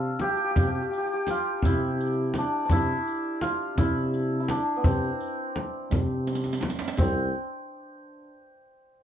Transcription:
Already playing: C3 D4 F4 A4
0.20 G4, tombak tek, frame drum
0.29 G4
0.37 G4
0.44 G4
0.51 G4
0.56 C3 G4, riq, frame drum, tombak dum
0.67 G4
0.75 G4
0.82 G4
0.90 G4, riq
0.98 G4
1.06 G4
1.14 G4
1.27 F4, riq, tombak tek, frame drum
1.62 C3 E4, riq, frame drum, tombak dum
2.00 riq, tombak ka
2.34 riq, tombak tek, frame drum
2.38 D4
2.65 D4
2.69 C3 E4, riq, frame drum, tombak dum
3.07 riq
3.41 F4, riq, tombak tek, frame drum
3.78 C3 E4, riq, frame drum, tombak dum
4.14 riq, tombak ka
4.40 E4
4.49 D4, riq, tombak tek, frame drum
4.77 B3
4.84 C3 C4, riq, frame drum, tombak dum
5.20 riq, tombak ka
5.56 tombak tek, frame drum
5.91 C3, riq, tombak dum, frame drum
6.27 riq, tombak tek
6.35 riq
6.44 riq, tombak ka
6.53 riq
6.61 riq, tombak tek, frame drum
6.70 riq
6.79 riq, tombak ka
6.88 riq
6.97 C2 C4, riq, frame drum, tombak dum

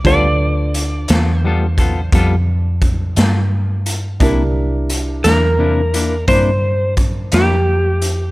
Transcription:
0.04 D2 G3 B3 D4 F4 A4 B4 D5, kick, closed hi-hat
0.74 closed hi-hat
1.08 E2 F4 A4, snare, closed hi-hat
1.12 B3
1.39 C5
1.45 G3 B3 F4 A4
1.78 B3 F4 A4, kick, closed hi-hat
2.12 F2 G3 B3 F4 A4, kick, closed hi-hat
2.82 kick, closed hi-hat
3.16 G2 B3 F4 A4, snare, closed hi-hat
3.86 closed hi-hat
4.20 C2 C3 A#3 D4 E4 G4 A#4, kick, closed hi-hat
4.90 closed hi-hat
5.24 E2 A#3 D4 E4 A#4, snare, closed hi-hat
5.58 C3 A#3 D4 E4
5.94 A#3 D4 E4, closed hi-hat
6.28 G2 C3 A#3 D4 E4 C5, kick, closed hi-hat
6.97 kick, closed hi-hat
7.32 F2 A#3 D4 E4 G4, snare, closed hi-hat
8.02 closed hi-hat

